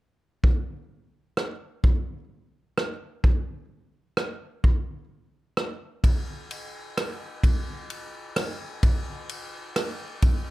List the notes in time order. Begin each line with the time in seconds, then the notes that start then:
0.44 kick
1.37 cross-stick
1.84 kick
2.78 cross-stick
3.24 kick
4.17 cross-stick
4.64 kick
5.57 cross-stick
6.04 kick, ride
6.51 ride
6.97 cross-stick, ride
7.43 kick, ride
7.90 ride
8.36 cross-stick, ride
8.83 kick, ride
9.29 ride
9.76 cross-stick, ride
10.22 kick, ride